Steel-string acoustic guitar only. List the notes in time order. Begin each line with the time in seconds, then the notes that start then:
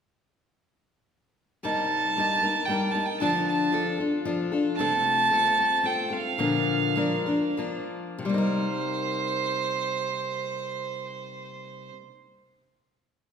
1.63 C3 G3 A#3 D#4 A#4
2.16 G3 A#3 D#4 A#4
2.43 A#3 D#4 A#4
2.68 G3 A#3 D#4 A#4
2.94 A#3 D#4 A#4
3.20 D3 F3 D4 F4 A4
3.72 F3 D4 F4 A4
3.98 D4 F4 A4
4.25 F3 D4 F4 A4
4.52 D4 F4 A4
4.79 C3 A3 C4 F4 A4
5.31 A3 C4 F4 A4
5.58 C4 F4 A4
5.83 A3 C4 F4 A4
6.10 C4 F4 A4
6.38 A#2 D3 F3 A#3 D4 A#4
6.96 F3 A#3 D4 A#4
7.26 F3 A#3 D4 A#4
7.57 F3 A#3 D4 A#4
8.19 C3
8.25 G3
8.29 A#3
8.34 D#4 A#4